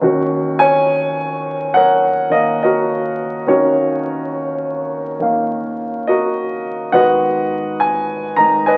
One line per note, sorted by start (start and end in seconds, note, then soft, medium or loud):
0.01 3.45 D#2 soft
0.01 2.28 D#3 soft
0.01 3.47 C#4 soft
0.01 2.63 F#4 medium
0.59 1.75 C#5 medium
0.59 1.78 G#5 loud
1.74 2.62 A#4 medium
1.74 3.44 C#5 medium
1.74 2.28 F#5 medium
2.30 3.46 D#3 soft
2.30 3.47 A#3 soft
2.30 2.61 D#5 medium
2.30 3.48 F5 soft
2.63 3.47 F#4 soft
2.63 3.47 A#4 medium
2.63 3.51 D#5 medium
3.47 6.93 D#2 soft
3.47 5.18 D#3 soft
3.47 6.94 C#4 soft
3.47 6.07 F#4 soft
3.47 5.17 A#4 soft
3.47 4.88 C#5 medium
5.20 6.92 D#3 soft
5.20 6.94 A#3 soft
5.20 6.94 F5 soft
6.07 6.90 F#4 soft
6.07 6.90 A#4 soft
6.07 6.90 D#5 medium
6.92 8.77 G#2 soft
6.92 8.36 D#3 soft
6.92 8.77 B3 soft
6.92 8.77 F#4 soft
6.92 8.63 B4 medium
6.92 8.63 D#5 medium
6.92 7.82 F#5 medium
7.80 8.39 G#5 medium
8.36 8.77 D#3 soft
8.36 8.77 G#3 soft
8.36 8.77 D#4 soft
8.36 8.43 A#5 medium
8.66 8.77 B4 medium
8.66 8.77 D#5 medium
8.66 8.77 G#5 medium